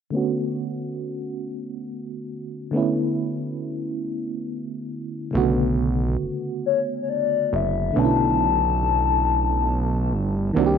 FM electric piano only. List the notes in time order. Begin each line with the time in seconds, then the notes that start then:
0.10 D3 A3 B3
0.15 C#4 F#4
2.71 D3 A3 B3
2.76 C#4 E4
5.31 C#3 A3 B3
5.36 C#3 D3 F#4
7.92 D3 A3 B3
7.97 C#4 D4
8.05 E4
10.53 D#3 A#3 C4
10.58 D4 F#4
10.66 G4